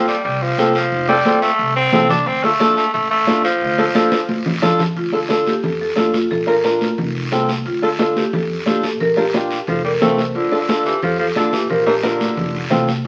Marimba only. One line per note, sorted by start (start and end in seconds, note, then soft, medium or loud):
4.97 5.49 F4 medium
5.48 5.55 G4 medium
5.64 5.71 A4 medium
5.81 5.96 A4 medium
5.97 6.13 F4 medium
6.14 6.30 F4 medium
6.31 6.46 A4 loud
6.48 6.63 A#4 loud
6.66 7.28 F4 medium
7.67 8.13 F4 medium
8.16 8.24 G4 medium
8.34 8.68 A4 medium
8.67 8.75 G4 medium
8.84 8.99 A4 medium
9.01 9.16 A#4 loud
9.17 9.48 G4 medium
9.68 9.84 A4 medium
9.85 9.92 A#4 medium
10.02 10.25 C5 loud
10.35 10.87 F4 medium
10.86 11.02 G4 medium
11.03 11.19 A4 medium
11.20 11.28 A4 medium
11.37 11.54 F4 medium
11.53 11.71 G4 medium
11.70 11.86 A#4 loud
11.86 11.94 G4 medium
12.03 12.67 F4 medium